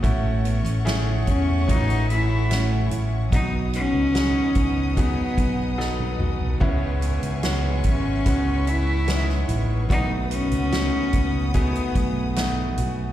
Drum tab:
CC |----------------|----------------|x---------------|----------------|
HH |x-xxx-x-xxx-x-x-|x-x-x-x-x-x-----|--xxx-x-x-x-x-x-|x-xxx-x-xxx-x-x-|
SD |----o-------o---|----o-------o---|----o-------oo--|----o-------o---|
T1 |----------------|-------------o--|----------------|----------------|
T2 |----------------|--------------o-|----------------|----------------|
FT |----------------|---------------o|----------------|----------------|
BD |o-----o-o-------|o-----o-o-o-----|o-----o-o-------|o-----o-o-o-----|